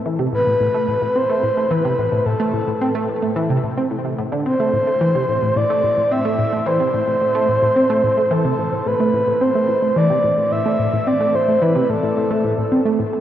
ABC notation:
X:1
M:4/4
L:1/16
Q:1/4=109
K:Am
V:1 name="Soft synth lead"
z2 B6 c4 B4 | A8 z8 | c8 d4 e4 | c12 A4 |
B4 c4 d4 e4 | d2 c2 B2 A8 z2 |]
V:2 name="Synth arpeggio sound" clef=bass
E, C, A,, A,, A,, A, A,, A,, C A, A,, A, E, C, A,, A,, | A,, A, A,, A,, C A, A,, A, E, C, A,, C A,, C, A,, D, | C A, A,, A, E, C, A,, A,, A,, A, A,, A,, C A, A,, A, | E, C, A,, A,, A,, A, A,, A,, C A, A,, A, E, C, A,, A,, |
A,, A, A,, A,, C A, A,, A, E, C, A,, A,, A,, A, A,, A,, | C A, A,, A, E, C, A,, A,, A,, A, A,, A,, C A, A,, A, |]